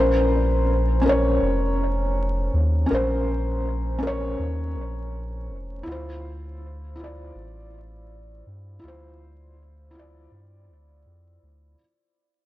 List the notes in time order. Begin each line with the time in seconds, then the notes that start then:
Already playing: A#1 C#4 A#4
0.00 C5
1.01 C#4
1.06 A#4 C#5
1.42 F1
2.54 D#2
2.86 C#4
2.91 A#1 A#4 C5
3.99 C#4
4.03 A#4
4.07 C#5
4.39 D#2
4.76 A#1
5.49 F1
5.83 D2 E4
5.87 F4
5.92 C5
6.96 E4
7.00 F4
7.04 D5
7.35 A1
8.46 G2
8.79 D2 E4
8.84 F4
8.88 C5
9.91 E4
9.95 F4
9.99 D5
10.31 G2
10.68 D2
11.06 F2
11.43 D2